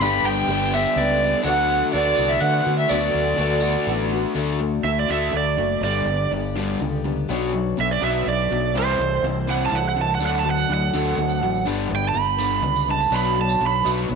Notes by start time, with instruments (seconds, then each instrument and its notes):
0.00 fingered electric bass G1, steel-string acoustic guitar G2 D3 G3 B3 D4 G4, overdriven electric guitar G2 D3 G3 B3 D4, grand piano G4 B4 D5 G5, fiddle B5, tambourine
0.04 overdriven electric guitar G4
0.23 fingered electric bass G1, fiddle G5
0.47 fingered electric bass G1, overdriven electric guitar G2 D3 G3 B3 D4 G4, steel-string acoustic guitar G3 B3 D4, grand piano G4 B4 D5 G5
0.52 steel-string acoustic guitar G4
0.72 overdriven electric guitar G3 B3 D4 G4, steel-string acoustic guitar B3 D4 G4, fiddle E5, tambourine
0.77 steel-string acoustic guitar G3
0.85 tambourine
0.96 fingered electric bass C#2, steel-string acoustic guitar G3 B3 D4, grand piano G4 B4 D5, fiddle D5
1.00 steel-string acoustic guitar G4, grand piano G5
1.43 fingered electric bass D2, overdriven electric guitar D3 A3 D4 F#4, steel-string acoustic guitar D3, grand piano A4 D5, fiddle F#5, tambourine
1.47 steel-string acoustic guitar F#3 A3 B3 F#4, grand piano B4 F#5
1.93 fingered electric bass D2, overdriven electric guitar D3 A3 D4 F#4, steel-string acoustic guitar F#3 A3 B3 F#4, grand piano A4 B4 D5 F#5, fiddle D5
2.16 fingered electric bass C2, overdriven electric guitar A3 D4 F#4, steel-string acoustic guitar F#4, tambourine
2.21 steel-string acoustic guitar A3 B3
2.29 fiddle E5, tambourine
2.40 fingered electric bass D3, steel-string acoustic guitar F#3 A3 B3, grand piano A4 B4 D5 E5, fiddle F#5
2.45 steel-string acoustic guitar F#4
2.65 fingered electric bass D3, steel-string acoustic guitar A3 B3 F#4
2.78 fiddle E5
2.88 fingered electric bass D2, overdriven electric guitar D3 A3 D4 F#4, steel-string acoustic guitar D3 F#3, grand piano A4 B4 D5, fiddle D5, tambourine
2.92 steel-string acoustic guitar A3 B3 F#4, grand piano F#5
3.13 fingered electric bass D2, tambourine
3.37 fingered electric bass D2, overdriven electric guitar D3 A3 D4 F#4, steel-string acoustic guitar F#3 A3, grand piano A4 B4 D5 F#5, tambourine
3.41 steel-string acoustic guitar B3 F#4
3.60 overdriven electric guitar A3 D4 F#4, steel-string acoustic guitar F#4, tambourine
3.66 steel-string acoustic guitar A3 B3
3.72 tambourine
3.87 fingered electric bass A1, steel-string acoustic guitar F#3 A3, grand piano A4 B4 D5 F#5
3.91 steel-string acoustic guitar B3 F#4
4.10 steel-string acoustic guitar F#4, tambourine
4.15 steel-string acoustic guitar A3 B3
4.35 fingered electric bass D2, overdriven electric guitar D3 A3 D4, steel-string acoustic guitar D3 F#3 A3 D4 F#4
4.60 overdriven electric guitar D3 A3
4.83 fingered electric bass D2, overdriven electric guitar D3 A3, steel-string acoustic guitar F#3 A3 D4, electric slide guitar E5
4.88 steel-string acoustic guitar F#4
5.00 electric slide guitar D5
5.09 fingered electric bass D2, overdriven electric guitar D3 A3 D4, steel-string acoustic guitar A3 D4 F#4, electric slide guitar E5
5.32 fingered electric bass D2, overdriven electric guitar D3 A3, steel-string acoustic guitar F#3 A3 D4
5.37 steel-string acoustic guitar F#4, electric slide guitar D5
5.57 fingered electric bass F#1, overdriven electric guitar D3 A3, steel-string acoustic guitar D4 F#4
5.61 steel-string acoustic guitar A3
5.81 fingered electric bass G1, steel-string acoustic guitar G2 D3 G3 B3 D4, overdriven electric guitar G2 D3 G3, electric slide guitar D5
5.85 steel-string acoustic guitar G4
6.05 fingered electric bass G1, overdriven electric guitar G2 D3
6.31 fingered electric bass G1, overdriven electric guitar G2 D3, steel-string acoustic guitar G3
6.35 steel-string acoustic guitar B3 D4 G4
6.55 overdriven electric guitar G2 D3 G3, steel-string acoustic guitar B3 D4 G4
6.60 steel-string acoustic guitar G3
6.81 fingered electric bass C#2, overdriven electric guitar G2 D3, steel-string acoustic guitar G3 B3 D4 G4
7.04 overdriven electric guitar G2 D3, steel-string acoustic guitar G3 B3 D4 G4
7.28 fingered electric bass B1, steel-string acoustic guitar B2 F#3 B3 D4 F#4 C#5, overdriven electric guitar B2 F#3 B3
7.54 overdriven electric guitar B2 F#3
7.78 fingered electric bass B1, overdriven electric guitar B2 F#3, steel-string acoustic guitar B3 D4 F#4 C#5, electric slide guitar E5
7.91 electric slide guitar D5
8.01 fingered electric bass B1, overdriven electric guitar B2 F#3 B3, steel-string acoustic guitar B3 D4 F#4 C#5, electric slide guitar E5
8.25 fingered electric bass B1, overdriven electric guitar B2 F#3, steel-string acoustic guitar B3 D4 F#4 C#5, electric slide guitar D5
8.48 fingered electric bass B1, overdriven electric guitar B2, steel-string acoustic guitar B3 D4 F#4 C#5
8.53 overdriven electric guitar F#3
8.74 fingered electric bass C2, steel-string acoustic guitar C3 E3 G3 C4 E4 C5, overdriven electric guitar C3 E3 G3
8.78 electric slide guitar C5
8.99 fingered electric bass C2, overdriven electric guitar C3 E3
9.22 fingered electric bass C2, overdriven electric guitar C3 E3, steel-string acoustic guitar G3 C4 E4
9.27 steel-string acoustic guitar C5
9.47 overdriven electric guitar C3 E3 G3, steel-string acoustic guitar G3 C4 E4 C5, electric slide guitar F#5
9.66 electric slide guitar A5
9.71 fingered electric bass C2, overdriven electric guitar C3 E3, steel-string acoustic guitar G3 C4 E4 C5
9.75 electric slide guitar F#5
9.89 electric slide guitar F#5
9.96 overdriven electric guitar C3 E3
10.01 electric slide guitar A5
10.15 steel-string acoustic guitar D3, electric slide guitar F#5
10.19 fingered electric bass D2, overdriven electric guitar D3 F#3 A3, steel-string acoustic guitar D4 F#4 A4, tambourine
10.26 electric slide guitar F#5
10.39 electric slide guitar A5
10.45 overdriven electric guitar D3 F#3
10.51 electric slide guitar F#5
10.57 tambourine
10.67 fingered electric bass D2, steel-string acoustic guitar D3 D4 F#4 A4, overdriven electric guitar D3 F#3
10.74 electric slide guitar F#5
10.91 fingered electric bass D2, overdriven electric guitar D3 F#3 A3, steel-string acoustic guitar D4 F#4 A4, tambourine
11.16 fingered electric bass D2, steel-string acoustic guitar D3 D4 F#4 A4, overdriven electric guitar D3 F#3
11.30 tambourine
11.39 fingered electric bass A1, overdriven electric guitar D3, steel-string acoustic guitar D4 F#4 A4
11.43 overdriven electric guitar F#3
11.55 tambourine
11.65 fingered electric bass G1, overdriven electric guitar G2 D3 G3, steel-string acoustic guitar G3 B3 D4 B4, tambourine
11.90 fingered electric bass G1, overdriven electric guitar G2 D3
11.96 electric slide guitar G5
12.09 electric slide guitar A5
12.13 fingered electric bass G1, overdriven electric guitar G2 D3, steel-string acoustic guitar G3 B3 D4 B4
12.20 electric slide guitar B5
12.37 overdriven electric guitar G2 D3 G3, steel-string acoustic guitar B3 D4 B4, tambourine
12.61 fingered electric bass C#2, overdriven electric guitar G2 D3, steel-string acoustic guitar G3 B3 D4 B4
12.76 tambourine
12.83 steel-string acoustic guitar B3 B4
12.88 overdriven electric guitar G2 D3, steel-string acoustic guitar D4, electric slide guitar A5
13.01 tambourine
13.09 fingered electric bass B1, steel-string acoustic guitar B2 F#3 B3 D4 F#4 C#5, overdriven electric guitar B2 F#3 B3, tambourine
13.16 electric slide guitar B5
13.37 overdriven electric guitar B2 F#3, electric slide guitar A5
13.49 tambourine
13.59 fingered electric bass B1, overdriven electric guitar B2 F#3, steel-string acoustic guitar B3 D4 F#4 C#5
13.67 electric slide guitar B5
13.83 fingered electric bass B1, overdriven electric guitar B2 F#3 B3, steel-string acoustic guitar B3 D4 F#4 C#5, tambourine
14.08 fingered electric bass B1, overdriven electric guitar B2 F#3, steel-string acoustic guitar B3 D4 F#4 C#5